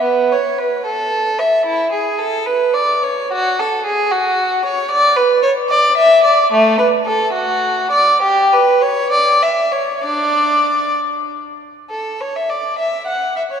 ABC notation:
X:1
M:6/8
L:1/16
Q:3/8=71
K:A
V:1 name="Violin"
B,2 c2 B2 A4 e2 | E2 G2 A2 B2 d2 c2 | F2 A2 G2 F4 c2 | [K:D] d2 B2 c2 d2 e2 d2 |
A,2 B2 A2 F4 d2 | G2 B2 c2 d2 e2 c2 | [Dd]6 z6 | [K:Emix] A2 c e d2 e2 f2 e c |]